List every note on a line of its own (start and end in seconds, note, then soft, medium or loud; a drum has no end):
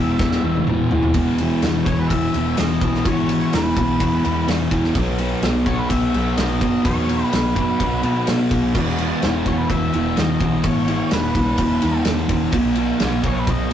0.00 0.14 E1 medium
0.00 0.66 E2 medium
0.00 0.44 B2 medium
0.00 0.42 E3 medium
0.00 2.51 B3 medium
0.00 0.64 E5 loud
0.19 0.38 E1 medium
0.19 kick loud
0.19 snare medium
0.32 snare medium
0.43 0.61 E1 medium
0.43 0.68 B2 medium
0.43 0.68 E3 medium
0.55 high tom medium
0.67 0.86 E1 medium
0.67 1.13 E2 medium
0.67 0.93 B2 medium
0.67 0.91 E3 medium
0.67 mid tom medium
0.91 1.09 E1 medium
0.91 1.15 B2 soft
0.91 1.14 E3 medium
0.91 floor tom loud
1.03 floor tom medium
1.14 1.52 E1 medium
1.14 1.64 E2 medium
1.14 1.41 B2 loud
1.14 1.40 E3 loud
1.14 kick loud
1.14 ride medium
1.38 1.64 B2 medium
1.38 1.66 E3 medium
1.38 ride medium
1.62 1.81 E1 medium
1.62 1.90 E2 medium
1.62 1.88 B2 medium
1.62 1.87 E3 medium
1.62 snare loud
1.62 ride medium
1.85 2.05 E1 medium
1.85 2.13 E3 medium
1.85 1.99 C#5 medium
1.85 kick medium
1.85 ride medium
1.89 2.11 E2 medium
1.89 2.12 B2 medium
1.99 2.11 B4 medium
2.08 2.28 E1 medium
2.08 2.58 E5 loud
2.08 kick medium
2.08 ride medium
2.12 2.36 E2 medium
2.12 2.35 B2 medium
2.12 2.33 E3 medium
2.34 2.53 E1 medium
2.34 2.57 E2 medium
2.34 2.59 B2 medium
2.34 2.59 E3 medium
2.34 ride medium
2.57 2.77 E1 medium
2.57 3.04 E2 medium
2.57 2.84 B2 medium
2.57 2.82 E3 medium
2.57 3.07 D#5 loud
2.57 snare loud
2.57 ride loud
2.81 3.00 B1 medium
2.81 3.05 B2 soft
2.81 3.07 E3 medium
2.81 kick medium
2.81 ride medium
2.95 snare soft
3.05 3.42 G#1 medium
3.05 3.51 E2 medium
3.05 3.30 B2 loud
3.05 3.28 E3 loud
3.05 3.54 C#5 loud
3.05 kick loud
3.05 ride medium
3.29 3.53 B2 medium
3.29 3.54 E3 medium
3.29 ride medium
3.52 3.72 E1 medium
3.52 3.79 E2 medium
3.52 3.78 B2 medium
3.52 3.76 E3 medium
3.52 4.45 B4 medium
3.52 snare loud
3.52 ride loud
3.77 3.95 B1 medium
3.77 3.98 E2 medium
3.77 4.00 B2 medium
3.77 4.01 E3 medium
3.77 kick medium
3.77 ride medium
4.00 4.18 E1 medium
4.00 4.26 E2 medium
4.00 4.24 B2 medium
4.00 4.23 E3 medium
4.00 kick medium
4.00 ride medium
4.24 4.43 E2 medium
4.24 4.46 E2 medium
4.24 4.47 B2 medium
4.24 4.48 E3 medium
4.24 ride medium
4.47 4.94 E2 medium
4.47 4.66 E2 medium
4.47 4.72 B2 medium
4.47 4.69 E3 medium
4.47 snare loud
4.47 ride loud
4.71 4.90 E1 medium
4.71 4.94 B2 soft
4.71 4.94 E3 medium
4.71 kick medium
4.71 ride medium
4.84 snare soft
4.95 5.32 B1 medium
4.95 5.43 B2 medium
4.95 5.21 F#3 loud
4.95 5.19 B3 loud
4.95 kick medium
4.95 ride medium
5.18 5.44 F#3 medium
5.18 5.45 B3 medium
5.18 ride medium
5.42 5.61 B1 medium
5.42 5.68 B2 medium
5.42 5.67 F#3 medium
5.42 5.66 B3 medium
5.42 snare loud
5.42 ride medium
5.66 5.84 B1 medium
5.66 5.88 B2 medium
5.66 5.90 F#3 medium
5.66 5.91 B3 medium
5.66 5.78 C#5 medium
5.66 kick medium
5.66 ride medium
5.78 5.91 B4 medium
5.89 6.08 B1 medium
5.89 6.15 B2 medium
5.89 6.15 F#3 medium
5.89 6.14 B3 medium
5.89 6.36 E5 medium
5.89 kick medium
5.89 ride medium
6.14 6.32 B1 medium
6.14 6.36 B2 medium
6.14 6.38 F#3 medium
6.14 6.39 B3 medium
6.14 ride medium
6.37 6.56 B1 medium
6.37 6.82 B2 medium
6.37 6.63 F#3 medium
6.37 6.60 B3 medium
6.37 6.86 D#5 loud
6.37 snare loud
6.37 ride medium
6.61 6.80 F#1 medium
6.61 6.85 F#3 soft
6.61 6.85 B3 medium
6.61 kick medium
6.61 ride medium
6.83 7.22 E2 medium
6.83 7.31 B2 loud
6.83 7.10 F#3 loud
6.83 7.07 B3 loud
6.83 7.34 C#5 medium
6.83 kick loud
6.83 ride medium
7.08 7.34 F#3 medium
7.08 7.35 B3 medium
7.08 ride medium
7.32 7.51 B1 medium
7.32 7.57 B2 medium
7.32 7.56 F#3 medium
7.32 7.55 B3 medium
7.32 8.25 B4 medium
7.32 snare loud
7.32 ride medium
7.56 7.75 F#2 medium
7.56 7.78 B2 medium
7.56 7.80 F#3 medium
7.56 7.82 B3 medium
7.56 kick medium
7.56 ride medium
7.80 7.99 B1 medium
7.80 8.04 B2 medium
7.80 8.04 F#3 medium
7.80 8.02 B3 medium
7.80 kick medium
7.80 ride loud
8.03 8.22 B2 medium
8.03 8.27 B2 medium
8.03 8.29 F#3 medium
8.03 8.30 B3 medium
8.03 ride medium
8.27 8.46 B2 medium
8.27 8.74 B2 medium
8.27 8.53 F#3 medium
8.27 8.51 B3 medium
8.27 snare loud
8.27 ride loud
8.51 8.77 B1 medium
8.51 8.76 F#3 soft
8.51 12.01 B3 medium
8.51 kick medium
8.51 ride medium
8.74 9.12 E1 medium
8.74 9.22 E2 loud
8.74 8.99 B2 medium
8.74 8.98 E3 loud
8.74 kick medium
8.74 crash medium
8.98 9.22 B2 medium
8.98 9.24 E3 medium
8.98 ride medium
9.22 9.41 E1 medium
9.22 9.48 E2 medium
9.22 9.46 B2 medium
9.22 9.46 E3 medium
9.22 snare loud
9.22 ride medium
9.46 9.65 E1 medium
9.46 9.68 E2 medium
9.46 9.70 B2 medium
9.46 9.71 E3 medium
9.46 9.57 C#5 medium
9.46 kick medium
9.46 ride medium
9.58 9.70 B4 medium
9.69 9.88 E1 medium
9.69 9.95 E2 medium
9.69 9.94 B2 medium
9.69 9.93 E3 medium
9.69 10.18 E5 loud
9.69 kick medium
9.69 ride medium
9.93 10.12 E1 medium
9.93 10.15 E2 medium
9.93 10.17 B2 medium
9.93 10.18 E3 medium
9.93 ride medium
10.17 10.36 E1 medium
10.17 10.64 E2 medium
10.17 10.43 B2 medium
10.17 10.41 E3 medium
10.17 10.67 D#5 loud
10.17 snare loud
10.17 ride medium
10.40 10.59 B1 medium
10.40 10.65 B2 soft
10.40 10.66 E3 medium
10.40 kick medium
10.40 ride medium
10.64 11.01 G#1 medium
10.64 11.11 E2 medium
10.64 10.88 B2 loud
10.64 10.86 E3 loud
10.64 11.12 C#5 loud
10.64 kick medium
10.64 ride medium
10.87 11.12 B2 medium
10.87 11.13 E3 medium
10.87 ride medium
11.11 11.30 E1 medium
11.11 11.36 E2 medium
11.11 11.35 B2 medium
11.11 11.33 E3 medium
11.11 12.03 B4 medium
11.11 snare loud
11.11 ride medium
11.35 11.53 B1 medium
11.35 11.57 E2 medium
11.35 11.59 B2 medium
11.35 11.60 E3 medium
11.35 kick medium
11.35 ride medium
11.58 11.77 E1 medium
11.58 11.83 E2 medium
11.58 11.82 B2 medium
11.58 11.81 E3 medium
11.58 kick medium
11.58 ride medium
11.82 12.01 E2 medium
11.82 12.05 E2 medium
11.82 12.06 B2 medium
11.82 12.07 E3 medium
11.82 ride medium
12.05 12.24 E2 medium
12.05 12.52 E2 medium
12.05 12.29 B2 medium
12.05 12.27 E3 medium
12.05 snare loud
12.05 ride medium
12.28 12.47 E1 medium
12.28 12.51 B2 soft
12.28 12.51 E3 medium
12.28 kick medium
12.28 ride medium
12.52 12.89 B1 medium
12.52 12.98 B2 loud
12.52 12.77 F#3 loud
12.52 12.76 B3 loud
12.52 kick medium
12.52 ride loud
12.75 12.99 F#3 medium
12.75 13.01 B3 medium
12.75 ride medium
12.99 13.19 B1 medium
12.99 13.24 B2 medium
12.99 13.23 F#3 medium
12.99 13.23 B3 medium
12.99 snare loud
12.99 ride medium
13.23 13.42 B1 medium
13.23 13.46 B2 medium
13.23 13.48 F#3 medium
13.23 13.49 B3 medium
13.23 kick medium
13.23 ride medium
13.28 13.39 C#5 medium
13.39 13.50 B4 medium
13.47 13.66 B1 medium
13.47 13.71 B2 medium
13.47 13.71 F#3 medium
13.47 13.71 B3 medium
13.47 13.73 D#5 medium
13.47 kick medium
13.47 ride medium